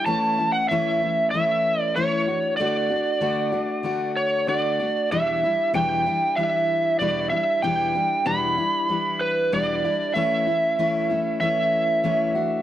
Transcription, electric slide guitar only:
0.06 0.50 A5 loud
0.52 0.68 F#5 medium
0.69 1.30 E5 medium
1.31 1.81 E5 loud
1.81 1.96 D5 loud
1.96 2.56 C#5 medium
2.57 4.11 D5 loud
4.17 4.48 C#5 medium
4.49 5.11 D5 medium
5.12 5.70 E5 loud
5.75 6.39 G5 loud
6.36 6.99 E5 loud
6.99 7.29 D5 medium
7.30 7.60 E5 medium
7.62 8.27 G5 loud
8.27 9.23 B5 loud
9.21 9.50 B4 medium
9.54 10.12 D5 medium
10.14 11.39 E5 loud
11.40 12.62 E5 loud

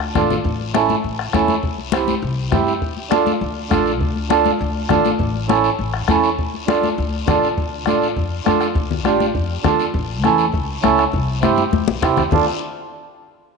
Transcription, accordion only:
0.15 0.36 D4 medium
0.15 0.36 F4 medium
0.15 0.37 A4 medium
0.74 0.95 C#4 medium
0.74 0.96 E4 medium
0.74 0.96 A4 medium
1.33 1.55 C#4 medium
1.33 1.55 E4 medium
1.33 1.55 A4 medium
1.93 2.14 C4 medium
1.93 2.14 E4 medium
1.93 2.15 G4 medium
2.52 2.73 C4 medium
2.52 2.73 E4 medium
2.52 2.73 G4 medium
3.10 3.32 D4 medium
3.10 3.32 F4 medium
3.10 3.32 A4 loud
3.70 3.92 D4 medium
3.70 3.92 F4 medium
3.70 3.92 A4 loud
4.30 4.51 D4 medium
4.30 4.51 F4 medium
4.30 4.52 A4 loud
4.90 5.11 D4 medium
4.90 5.11 F4 medium
4.90 5.11 A4 medium
5.48 5.70 C#4 medium
5.48 5.70 E4 medium
5.48 5.70 A4 medium
6.08 6.29 C#4 medium
6.08 6.29 E4 medium
6.08 6.30 A4 loud
6.67 6.89 D4 medium
6.67 6.89 F4 medium
6.67 6.89 A4 medium
7.27 7.48 D4 medium
7.27 7.48 F4 medium
7.27 7.48 A4 medium
7.86 8.07 D4 medium
7.86 8.07 F4 medium
7.86 8.08 A4 medium
8.45 8.67 D4 medium
8.45 8.67 F4 medium
8.45 8.67 A4 medium
9.05 9.26 D4 medium
9.05 9.26 F4 medium
9.05 9.26 G4 medium
9.63 9.85 D4 medium
9.63 9.85 F4 medium
9.63 9.85 A4 medium
10.24 10.45 C#4 medium
10.24 10.45 E4 medium
10.24 10.45 A4 loud
10.83 11.04 C#4 medium
10.83 11.04 E4 medium
10.83 11.04 A4 loud
11.42 11.63 C4 medium
11.42 11.64 E4 medium
11.42 11.64 G4 loud
12.02 12.23 C4 medium
12.02 12.23 E4 medium
12.02 12.23 G4 loud
12.32 12.46 D4 medium
12.32 12.46 F4 medium
12.32 12.46 A4 medium

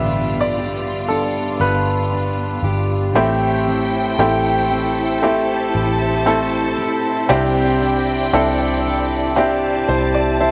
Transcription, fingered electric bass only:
0.00 1.57 A1 medium
1.60 2.60 G1 medium
2.62 3.12 G1 medium
3.14 4.15 A1 medium
4.19 5.70 A1 medium
5.75 6.74 A1 medium
7.30 8.29 C2 loud
8.33 9.85 C2 loud
9.88 10.51 C2 medium

